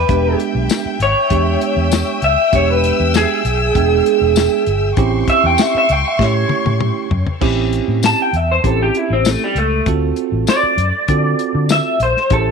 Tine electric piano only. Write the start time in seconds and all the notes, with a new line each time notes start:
0.09 G#3 B3 D4 G4
1.30 G#3 B3 D4 G4
2.52 G#3 B3 D4 G4
3.75 G#3 B3 D4 G5
4.97 C4 C#4 E4 G4
6.19 A3 C#4 E4 G4
7.41 C4 C#4 E4 G4
8.64 C4 C#4 E4 G4
9.87 C4 F4 F#4 A4
11.09 C4 F4 F#4 A4
12.31 C#4 E4 G4 C5